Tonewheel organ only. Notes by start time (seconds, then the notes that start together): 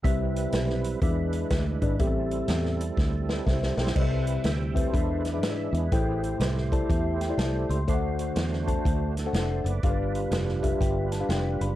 0.03 G3 C4 E4 B4
1.03 F3 D4 E4 B4
1.10 G#3
2.01 G3 C4 E4 G4
2.07 A4
3.49 A4
3.80 A4 C5
3.95 G3 C4 E4 B4
4.46 E5 G5
4.76 A4 C5
4.93 G#3 D4 E4 B4
5.26 B4 D5
5.44 E5
5.77 G#4 B4
5.92 A3 E4 G4 C5
7.89 A3 D4 F#4 C5
9.19 F#4 A4
9.36 A4 C5
9.66 B4 D5
9.84 G3 D4 F4 B4